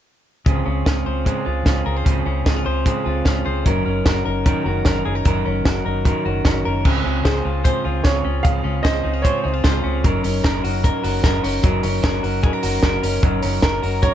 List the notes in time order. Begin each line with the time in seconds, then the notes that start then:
0.46 C#2 C#3 G#3 C4 F4 G#4, kick, closed hi-hat
0.66 C#2 C4 C#4 F4 G#4
0.85 C#2 G#3 C4 F4 G#4, kick, snare, closed hi-hat
1.05 C#2 C4 F4 G#4 C5
1.25 C#3 G#3 C4 F4 G#4, kick, closed hi-hat
1.45 C#2 C4 F4 G#4
1.64 C#2 G#3 C4 C#4 F4 G#4, kick, snare, closed hi-hat
1.85 C#2 C4 F4 G#4 A#4
1.96 C5
2.05 C#2 C#3 G#3 C4 F4 G#4, kick, closed hi-hat
2.24 C#2 C4 C#4 F4 G#4
2.45 C#2 G#3 C4 D#4 F4 G#4, kick, snare, closed hi-hat
2.56 F4
2.64 C#2 C4 F4 G#4 C5
2.85 C#3 G#3 C4 F4 G#4, kick, closed hi-hat
3.04 C#2 C4 F4 G#4
3.24 C#2 G#3 C4 C#4 F4 G#4, kick, snare, closed hi-hat
3.44 C#2 C4 F4 G#4 C5
3.65 F#1 F#3 C#4 D#4 A#4, kick, closed hi-hat
3.85 F#1 C#4 D#4 A#4
4.05 F#1 F#3 C#4 D#4 F#4 A#4, kick, snare, closed hi-hat
4.25 F#1 C#4 D#4 A#4
4.45 D#3 F#3 C#4 D#4 A#4, kick, closed hi-hat
4.64 F#1 C#4 D#4 F#4 A#4
4.85 F#1 F#3 C#4 D#4 A#4, kick, snare, closed hi-hat
5.05 F#1 C#4 D#4 G#4 A#4
5.15 A#4
5.25 F#1 F#3 C#4 D#4 A#4, kick, closed hi-hat
5.45 F#1 C#4 D#4 A#4
5.65 F#1 F#3 C#4 D#4 F#4 A#4, kick, snare, closed hi-hat
5.85 F#1 C#4 D#4 A#4
6.05 D#3 F#3 C#4 D#4 A#4, kick, closed hi-hat
6.25 F#1 C#4 D#4 F#4 A#4
6.45 F#1 F#3 C#4 D#4 A#4, kick, snare, closed hi-hat
6.65 F#1 C#4 D#4 A#4
6.84 C#2 C#3 G#3 C4 F4 G#4, kick, crash
7.04 C#2 C4 C#4 F4 G#4
7.24 C#2 C#3 G#3 C4 F4 G#4 C5, kick, snare, closed hi-hat
7.44 C#2 C4 F4 G#4
7.64 G#3 C4 F4 G#4 C5, kick, closed hi-hat
7.84 C#2 C4 F4 G#4
8.04 C#2 C#3 G#3 C4 F4 G#4 C#5, kick, snare, closed hi-hat
8.24 C#2 C4 C#4 F4 G#4
8.43 C#2 C#3 G#3 C4 F4 G#4 F5, kick, closed hi-hat
8.63 C#2 C4 C#4 F4 G#4
8.83 C#2 C#3 G#3 C4 F4 G#4 C5 D#5, kick, snare, closed hi-hat
9.03 C#2 C4 D#4 F4 G#4
9.13 F4
9.22 G#3 C4 F4 C5 C#5, kick, closed hi-hat
9.27 G#4
9.42 C#2 D#4 F4 G#4 C5
9.47 C4
9.53 F4
9.64 C#2 C#3 G#3 C4 F4 G#4 C5, kick, snare, closed hi-hat
9.84 C#2 C4 C#4 F4 G#4
10.04 F#1 F#3 C#4 D#4 A#4, kick, closed hi-hat
10.23 F#1 C#4 D#4 A#4, open hi-hat
10.44 F#1 F#3 C#4 D#4 A#4, kick, snare, closed hi-hat
10.63 F#1 C#4 D#4 F#4 A#4, open hi-hat
10.84 F#3 C#4 D#4 A#4, kick, closed hi-hat
11.03 F#1 C#4 D#4 F#4 A#4, open hi-hat
11.24 F#1 F#3 C#4 D#4 A#4, kick, snare, closed hi-hat
11.43 F#1 C#4 D#4 A#4, open hi-hat
11.63 F#1 F#3 C#4 D#4 A#4, kick, closed hi-hat
11.83 F#1 C#4 D#4 A#4, open hi-hat
12.02 F#1 F#3 C#4 D#4 A#4, kick, snare, closed hi-hat
12.23 F#1 C#4 D#4 F#4 A#4, open hi-hat
12.42 F#3 C#4 D#4 G#4 A#4, kick, closed hi-hat
12.53 A#4
12.62 F#1 C#4 D#4 F#4 A#4, open hi-hat
12.83 F#1 F#3 C#4 D#4 A#4, kick, snare, closed hi-hat
13.03 F#1 C#4 D#4 A#4, open hi-hat
13.22 F#1 F#3 C#4 D#4 A#4, kick, closed hi-hat
13.42 F#1 C#4 D#4 A#4, open hi-hat
13.62 F#1 F#3 C#4 D#4 A#4, kick, snare, closed hi-hat
13.82 F#1 C#4 D#4 F#4 A#4, open hi-hat
14.02 F#3 C#4 D#4 A#4 C#5, kick, closed hi-hat